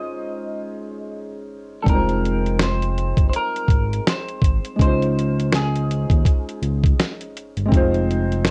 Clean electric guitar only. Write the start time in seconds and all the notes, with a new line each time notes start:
Already playing: D#5
1.83 A4
1.90 A#4
2.63 C5
3.29 C5
3.36 A#4
4.09 C5
4.82 C5
5.55 G#4